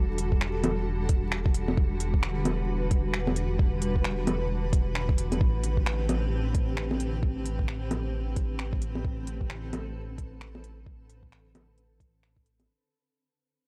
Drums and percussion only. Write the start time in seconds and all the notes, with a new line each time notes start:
0.18 closed hi-hat
0.32 kick
0.41 finger snap
0.64 closed hi-hat, low bongo
1.09 kick, closed hi-hat
1.32 finger snap
1.46 kick
1.54 closed hi-hat
1.68 low bongo
1.77 kick
2.00 closed hi-hat
2.14 kick
2.23 finger snap
2.45 closed hi-hat, low bongo
2.91 kick, closed hi-hat
3.14 finger snap
3.27 low bongo
3.36 closed hi-hat
3.59 kick
3.82 closed hi-hat
3.96 kick
4.04 finger snap
4.27 closed hi-hat, low bongo
4.73 kick, closed hi-hat
4.95 finger snap
5.09 kick
5.18 closed hi-hat
5.32 closed hi-hat, low bongo
5.41 kick
5.64 closed hi-hat
5.77 kick
5.86 finger snap
6.09 closed hi-hat, low bongo
6.55 kick, closed hi-hat
6.77 finger snap
6.91 low bongo
7.00 closed hi-hat
7.23 kick
7.46 closed hi-hat
7.59 kick
7.68 finger snap
7.91 closed hi-hat, low bongo
8.36 kick, closed hi-hat
8.59 finger snap
8.73 kick
8.82 closed hi-hat
8.95 low bongo
9.05 kick
9.27 closed hi-hat
9.41 kick
9.50 finger snap
9.73 closed hi-hat, low bongo
10.18 kick, closed hi-hat
10.41 finger snap
10.55 low bongo
10.64 closed hi-hat
10.86 kick
11.10 closed hi-hat
11.23 kick
11.32 finger snap
11.55 closed hi-hat, low bongo
11.78 closed hi-hat
12.00 kick, closed hi-hat
12.23 finger snap
12.37 kick
12.46 closed hi-hat
12.60 closed hi-hat, low bongo